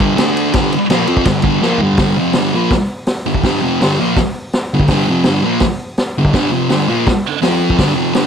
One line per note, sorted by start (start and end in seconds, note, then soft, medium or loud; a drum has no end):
0.00 0.17 G2 medium
0.00 0.15 D3 loud
0.00 0.15 G3 loud
0.00 kick medium
0.16 0.52 D3 medium
0.16 0.52 A3 loud
0.16 0.52 D4 loud
0.16 snare loud
0.16 ride loud
0.37 ride medium
0.53 0.71 G2 medium
0.53 0.71 D3 loud
0.53 0.71 G3 loud
0.53 kick loud
0.53 snare loud
0.53 ride loud
0.72 muted distorted electric guitar stroke medium
0.72 ride medium
0.90 1.07 A#2 medium
0.90 1.07 F3 medium
0.90 1.08 A#3 loud
0.90 snare loud
0.90 ride loud
1.07 1.26 F3 medium
1.07 1.26 C4 loud
1.07 1.26 F4 medium
1.07 ride medium
1.17 kick medium
1.25 1.41 G2 medium
1.25 1.41 D3 medium
1.25 kick loud
1.25 snare loud
1.25 ride loud
1.42 1.61 G2 medium
1.42 1.62 D3 loud
1.42 1.62 G3 loud
1.42 kick medium
1.42 ride medium
1.62 1.80 A#2 loud
1.62 1.80 F3 medium
1.62 1.80 A#3 loud
1.62 snare medium
1.78 1.98 G2 medium
1.78 1.98 D3 medium
1.78 1.98 G3 medium
1.78 floor tom medium
1.97 2.16 G2 medium
1.97 2.17 D3 medium
1.97 2.17 G3 loud
1.97 kick loud
1.97 snare loud
1.97 open hi-hat medium
2.18 2.35 F2 medium
2.18 2.35 C3 loud
2.18 2.35 F3 medium
2.33 2.53 G2 medium
2.33 2.53 D3 loud
2.33 2.53 G3 medium
2.33 snare loud
2.33 open hi-hat medium
2.54 2.71 A#2 medium
2.54 2.71 F3 medium
2.54 2.72 A#3 medium
2.71 kick loud
2.71 snare loud
2.71 open hi-hat medium
3.06 snare loud
3.06 open hi-hat medium
3.26 3.40 G2 medium
3.26 3.40 D3 medium
3.34 kick medium
3.43 3.61 G2 medium
3.43 3.62 D3 medium
3.43 3.62 G3 loud
3.43 kick loud
3.43 snare loud
3.43 open hi-hat medium
3.61 3.79 F2 loud
3.61 3.79 C3 loud
3.61 3.80 F3 medium
3.81 3.98 G2 loud
3.81 3.98 D3 medium
3.81 3.98 G3 loud
3.81 snare loud
3.81 open hi-hat medium
3.99 4.16 A#2 medium
3.99 4.16 F3 medium
3.99 4.17 A#3 medium
4.16 kick loud
4.16 snare loud
4.16 open hi-hat medium
4.53 snare loud
4.53 open hi-hat medium
4.74 4.86 G2 medium
4.74 4.87 D3 medium
4.80 kick medium
4.88 5.07 G2 medium
4.88 5.07 D3 medium
4.88 5.07 G3 loud
4.88 kick loud
4.88 snare loud
4.88 open hi-hat medium
5.09 5.25 F2 loud
5.09 5.25 C3 loud
5.09 5.26 F3 loud
5.24 5.43 G2 medium
5.24 5.42 D3 medium
5.24 snare loud
5.24 open hi-hat medium
5.28 5.44 G3 loud
5.43 5.60 A#2 medium
5.43 5.61 F3 medium
5.43 5.61 A#3 medium
5.60 kick loud
5.60 snare loud
5.60 open hi-hat medium
5.97 snare loud
5.97 open hi-hat medium
6.18 6.31 G2 medium
6.18 6.31 D3 medium
6.25 kick medium
6.33 6.51 G2 medium
6.33 6.51 D3 loud
6.33 6.51 G3 loud
6.33 kick loud
6.33 snare loud
6.33 open hi-hat medium
6.52 6.69 F2 medium
6.52 6.69 C3 loud
6.52 6.69 F3 loud
6.69 6.87 G2 medium
6.69 6.88 D3 medium
6.69 6.88 G3 loud
6.69 snare loud
6.69 open hi-hat medium
6.88 7.05 A#2 medium
6.88 7.06 F3 medium
6.88 7.06 A#3 loud
7.07 kick loud
7.07 snare loud
7.07 open hi-hat medium
7.42 7.78 F3 medium
7.42 7.78 C4 medium
7.42 7.78 F4 medium
7.42 snare loud
7.42 open hi-hat medium
7.70 kick medium
7.78 7.94 G2 loud
7.78 7.95 D3 medium
7.78 7.96 G3 loud
7.78 kick loud
7.78 snare loud
7.78 open hi-hat medium
7.94 8.13 F2 medium
7.94 8.13 C3 medium
7.94 8.14 F3 loud
8.14 8.27 G2 loud
8.14 8.27 D3 loud
8.14 8.27 G3 loud
8.14 snare loud
8.14 open hi-hat medium